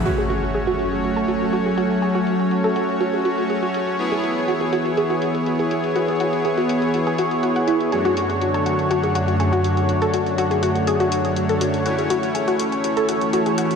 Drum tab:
CC |x---------------|----------------|----------------|----------------|
HH |xxxxxxxxxxxxxxxx|xxxxxxxxxxxxxxxx|xxxxxxxxxxxxxxxx|xxxxxxxxxxxxxxxx|

CC |----------------|----------------|----------------|
HH |xxxxxxxxxxxxxxxx|xxxxxxxxxxxxxxxx|xxxxxxxxxxxxxxxx|